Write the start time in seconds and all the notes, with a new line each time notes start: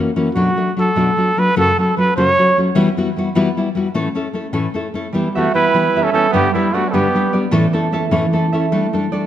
0.00 F#4
0.16 E3 A#3 C#4 F#4
0.35 B2 F#3 A3 D4 F#4
0.56 F#3 A3 D4 F#4
0.77 F#3 A3 D4 F#4 A4
0.96 B2 F#3 A3 D4 F#4
1.17 F#3 A3 D4 F#4
1.37 F#3 A3 D4 F#4 B4
1.56 F#2 C#3 F#3 A3 C#4 F#4 A4
1.78 F#3 A3 C#4 F#4 A4
1.97 F#3 A3 C#4 F#4 B4
2.17 F#2 C#3 F#3 A3 C#4 F#4 C#5
2.38 F#3 A3 C#4 F#4
2.57 F#3 A3 C#4 F#4
2.75 E3 G3 B3 E4 F#4
2.97 G3 B3 E4 F#4
3.16 G3 B3 E4 F#4
3.35 E3 G3 B3 E4 F#4
3.57 G3 B3 E4 F#4
3.75 G3 B3 E4 F#4
3.94 A2 E3 A3 C#4 E4 A4
4.15 A3 C#4 E4 A4
4.33 A3 C#4 E4 A4
4.53 A2 E3 A3 C#4 E4 A4
4.74 A3 C#4 E4 A4
4.94 A3 C#4 E4 A4
5.13 E3 G3 B3 E4 G4
5.35 E3 A3 B3 E4 F#4 G4 E5
5.54 E3 B3 E4 G4 B4 G5
5.74 E3 G3 B3 E4 G4
5.95 E3 B3 E4 G4 E5
6.02 C#4 A4
6.12 E3 B3 C#4 E4 G4 A4 G5
6.30 G2 D3 G3 B3 D4 G4
6.52 G3 B3 D4 E4 B4
6.56 G4
6.71 G3 A3 B3 D4 F#4 D5
6.76 G4
6.86 C#4 A4
6.91 G2 D3 G3 B3 D4 G4
7.14 G3 B3 D4 G4 B4
7.33 G3 B3 D4 G4 D5
7.51 A2 E3 A3 C#4 E4 A4
7.73 A3 C#4 E4 A4
7.92 A3 C#4 E4 A4 E5
8.11 A2 E3 A3 C#4 E4 A4
8.33 A3 C#4 E4 A4
8.53 A3 C#4 E4 A4 E5
8.72 G3 A3 D4 A4
8.93 G3 A3 D4 A4
9.12 G3 A3 D4 A4 D5